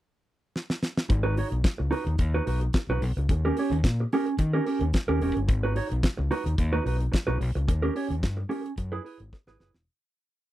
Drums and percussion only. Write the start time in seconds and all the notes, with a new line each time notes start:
0.56 snare
0.70 snare
0.83 snare
0.97 snare
1.10 kick, closed hi-hat
1.37 open hi-hat
1.52 closed hi-hat
1.64 kick, snare, closed hi-hat
1.92 open hi-hat
2.07 closed hi-hat
2.18 kick, closed hi-hat
2.47 open hi-hat
2.61 closed hi-hat
2.73 kick, snare, closed hi-hat
3.02 open hi-hat
3.17 closed hi-hat
3.29 kick, closed hi-hat
3.57 open hi-hat
3.72 closed hi-hat
3.84 kick, snare, closed hi-hat
4.12 open hi-hat
4.27 closed hi-hat
4.38 kick, closed hi-hat
4.66 open hi-hat
4.81 closed hi-hat
4.93 kick, snare, closed hi-hat
5.21 open hi-hat
5.37 closed hi-hat
5.48 kick, closed hi-hat
5.76 open hi-hat
5.91 closed hi-hat
6.03 kick, snare, closed hi-hat
6.32 open hi-hat
6.46 closed hi-hat
6.58 kick, closed hi-hat
6.86 open hi-hat
7.01 closed hi-hat
7.13 kick, snare, closed hi-hat
7.41 open hi-hat
7.57 closed hi-hat
7.68 kick, closed hi-hat
7.96 open hi-hat
8.11 closed hi-hat
8.23 kick, snare, closed hi-hat
8.51 open hi-hat
8.66 closed hi-hat
8.77 kick, closed hi-hat
9.06 open hi-hat
9.20 closed hi-hat
9.33 kick, snare
9.47 snare
9.60 snare
9.74 snare